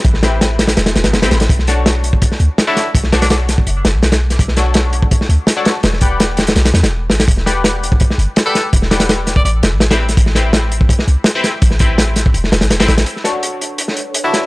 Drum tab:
HH |x-x-x-xxxxxxxxxx|x-x-x-x-x-x-x-x-|x-xxx-x-x-x-xx-x|x-x-x-x-x-x-x-x-|
SD |-oo-o-oooooooooo|-oo-o----o--o-o-|-oooo-o---o-oo-o|-oo-o----o--o-o-|
BD |o---------------|o------oo-------|o------o--------|o------oo-------|

HH |x-x-x-xxxxxx--xx|x-x-x-x-x-x-x-x-|x-xxx-x-x-x-xx-x|x-x-x-x-x-x-x-x-|
SD |oo--o-oooooo--oo|-oo-o----o--o-o-|-oooo-o---o-oo-o|-oo-o----o--o-o-|
BD |--o-------------|o------oo-------|o------o--------|o------oo-------|

HH |x-x-x-x-x-xxxxxx|x-x-x-x-x-x-x-x-|
SD |-o--o-o--ooooooo|-oo------o----o-|
BD |o-o----o--------|----------------|